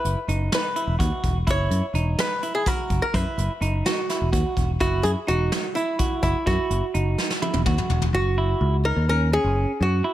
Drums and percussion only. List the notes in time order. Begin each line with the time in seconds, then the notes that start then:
0.05 closed hi-hat
0.29 closed hi-hat
0.52 snare, closed hi-hat
0.76 closed hi-hat
1.00 kick, closed hi-hat
1.24 kick, closed hi-hat
1.47 kick, closed hi-hat
1.71 closed hi-hat
1.95 closed hi-hat
2.19 snare, closed hi-hat
2.43 closed hi-hat
2.66 kick, closed hi-hat
2.90 kick, closed hi-hat
3.14 kick, closed hi-hat
3.38 closed hi-hat
3.62 closed hi-hat
3.86 snare, closed hi-hat
4.09 snare, closed hi-hat
4.33 kick, closed hi-hat
4.57 kick, closed hi-hat
4.80 kick, closed hi-hat
5.05 closed hi-hat
5.28 closed hi-hat
5.52 snare, closed hi-hat
5.76 closed hi-hat
5.99 kick, closed hi-hat
6.22 kick, closed hi-hat
6.47 kick, closed hi-hat
6.71 closed hi-hat
6.94 closed hi-hat
7.18 snare
7.30 snare
7.42 high tom
7.54 high tom
7.66 kick, mid tom
7.78 mid tom
7.90 floor tom
8.02 floor tom